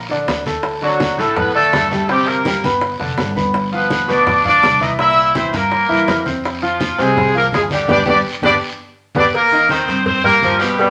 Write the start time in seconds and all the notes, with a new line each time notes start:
Already playing: A#1
0.09 D3 D4 D5, high bongo, high conga
0.27 D2, high bongo, low bongo, high conga, short guiro
0.46 A3 A4 A5, high bongo, high conga, short guiro
0.63 high bongo, high conga, long guiro
0.81 D3 F#3 D4 F#4 D5, high bongo, high conga
1.00 high bongo, high conga, short guiro
1.18 A1 A2 A3 A4, high bongo, high conga, short guiro
1.36 B3 B4, high bongo, high conga, low conga, long guiro
1.54 D3 A3 D4 A4 D5, high conga
1.73 G1, high bongo, low bongo, high conga, short guiro
1.91 G3 A3 G4 A4 G5, high bongo, high conga, short guiro
2.09 C3 G3 C4 G4 C5, high bongo, high conga, long guiro
2.27 A#3 A#4, high conga
2.45 G3 G4 G5, high bongo, high conga, short guiro
2.64 G1 B3 B4 B5, high bongo, high conga, short guiro
2.81 high bongo, high conga, long guiro
2.99 F1 D3 D4 D5, high bongo, high conga
3.18 G1, high bongo, low bongo, high conga, short guiro
3.36 B3 B4 B5, high bongo, high conga, short guiro
3.54 high bongo, high conga, long guiro
3.72 F3 B3 F4 B4 F5, high bongo, high conga
3.90 high bongo, high conga, short guiro
4.08 D2 B2 B3 D4 B4 D5, high bongo, high conga, short guiro
4.27 high bongo, high conga, low conga, long guiro
4.45 F3 D4 F4 D5 F5, high conga, low conga
4.62 C2, high bongo, low bongo, high conga, short guiro
4.80 E3 D#4 E4 D#5 E5, high bongo, high conga, short guiro
4.98 A#2 A#3 E4 A#4 E5, high bongo, high conga, long guiro
5.17 high conga
5.35 E3 C4 E4 C5 E5, high bongo, high conga, short guiro
5.48 C4 C5
5.53 G2 A#3 A#4 A#5, high bongo, high conga, short guiro
5.71 high bongo, high conga, long guiro
5.89 G2 E3 E4 E5, high bongo, high conga
6.08 F2, high bongo, low bongo, high conga, short guiro
6.25 C4 C5 C6, high bongo, high conga, short guiro
6.44 high bongo, high conga, long guiro
6.62 F3 F4 F5, high bongo, high conga
6.80 high bongo, high conga, short guiro
6.98 C2 C3 G#3 C4 G#4 C5, high bongo, high conga, short guiro
7.16 high bongo, high conga, low conga, long guiro
7.34 F3 A#3 F4 A#4 F5, high conga
7.52 G1 G#3 G#4, high bongo, low bongo, high conga, short guiro
7.70 D3 G3 D4 G4 D5, high bongo, high conga, short guiro
7.88 G1 B3 D4 G4 B4 D5, low bongo, high conga, long guiro
8.06 G1 B3 D4 G4 B4 D5, low bongo, high conga, long guiro
8.42 G1 B3 D4 G4 B4 D5, low bongo, high conga, long guiro
9.15 G1 B3 D4 G4 B4 D5, low bongo, high conga, long guiro
9.33 A#3 A#4, cowbell, high conga, long guiro
9.51 D#3 D#4 D#5, high conga
9.69 D#3 C4 C5, cowbell, high conga, short guiro
9.87 G2 C4 C5 C6, cowbell, high conga, short guiro
10.06 C4 C5, cowbell, high conga, low conga, long guiro
10.24 G3 A#3 G4 A#4 G5, high conga, low conga
10.42 G2 F3, cowbell, high conga, short guiro
10.59 B2 G3 B3 G4 B4, cowbell, short guiro
10.78 B2 G3 B3 B4, cowbell, high conga, long guiro